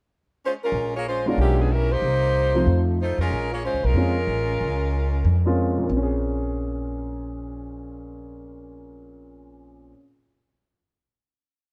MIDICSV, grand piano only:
0, 0, Header, 1, 2, 480
1, 0, Start_track
1, 0, Key_signature, -5, "minor"
1, 0, Tempo, 322061
1, 1095, Time_signature, 4, 2, 24, 8
1, 17473, End_track
2, 0, Start_track
2, 0, Title_t, "Grand piano"
2, 0, Program_c, 0, 0
2, 1875, Note_on_c, 0, 56, 62
2, 1891, Note_on_c, 0, 59, 51
2, 1900, Note_on_c, 0, 61, 57
2, 1904, Note_on_c, 0, 62, 61
2, 1912, Note_on_c, 0, 65, 62
2, 2504, Note_off_c, 0, 56, 0
2, 2512, Note_off_c, 0, 59, 0
2, 2517, Note_off_c, 0, 61, 0
2, 2519, Note_off_c, 0, 62, 0
2, 2523, Note_off_c, 0, 65, 0
2, 3796, Note_on_c, 0, 53, 57
2, 3800, Note_on_c, 0, 57, 52
2, 3808, Note_on_c, 0, 63, 50
2, 3812, Note_on_c, 0, 60, 53
2, 3820, Note_on_c, 0, 65, 59
2, 4427, Note_off_c, 0, 53, 0
2, 4429, Note_off_c, 0, 57, 0
2, 4433, Note_off_c, 0, 63, 0
2, 4435, Note_off_c, 0, 60, 0
2, 4439, Note_off_c, 0, 65, 0
2, 5888, Note_on_c, 0, 56, 54
2, 5895, Note_on_c, 0, 58, 52
2, 5905, Note_on_c, 0, 60, 51
2, 5917, Note_on_c, 0, 61, 53
2, 5923, Note_on_c, 0, 65, 60
2, 6167, Note_off_c, 0, 56, 0
2, 6170, Note_off_c, 0, 58, 0
2, 6175, Note_off_c, 0, 60, 0
2, 6181, Note_off_c, 0, 61, 0
2, 6184, Note_off_c, 0, 65, 0
2, 8131, Note_on_c, 0, 58, 57
2, 8135, Note_on_c, 0, 56, 56
2, 8138, Note_on_c, 0, 60, 51
2, 8149, Note_on_c, 0, 65, 68
2, 8154, Note_on_c, 0, 61, 55
2, 8611, Note_on_c, 0, 46, 61
2, 8680, Note_off_c, 0, 58, 0
2, 8702, Note_on_c, 0, 58, 54
2, 8748, Note_off_c, 0, 56, 0
2, 8750, Note_off_c, 0, 60, 0
2, 8755, Note_off_c, 0, 65, 0
2, 8757, Note_off_c, 0, 61, 0
2, 8797, Note_on_c, 0, 60, 51
2, 8896, Note_on_c, 0, 61, 54
2, 8984, Note_on_c, 0, 68, 67
2, 14757, Note_off_c, 0, 46, 0
2, 14803, Note_off_c, 0, 58, 0
2, 14850, Note_off_c, 0, 60, 0
2, 14899, Note_off_c, 0, 61, 0
2, 14944, Note_off_c, 0, 68, 0
2, 17473, End_track
0, 0, End_of_file